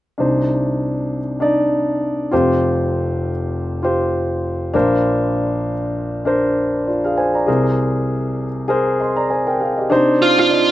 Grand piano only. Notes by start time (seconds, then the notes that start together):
0.18 C2 C3 D4 D#4 C5
1.40 D4 D#4 D5
2.31 F1 F2 F4 G4 C5
3.83 F4 G4 C5
4.74 A#1 A#2 D4 A#4 C5
6.25 D4 A#4 C5
6.87 F4 D5
7.04 G#4 F5
7.17 C5 G#5
7.35 D5 A#5
7.46 C2 C3 G#4 A#4 C5
8.68 G#4 A#4 C5
9.00 D#5 C6
9.16 D5 A#5
9.30 C5 G#5
9.47 A#4 G5
9.60 G#4 F5
9.77 G4 D#5
9.90 C3 D4 D#4 C5
10.50 D#4 D5 D#5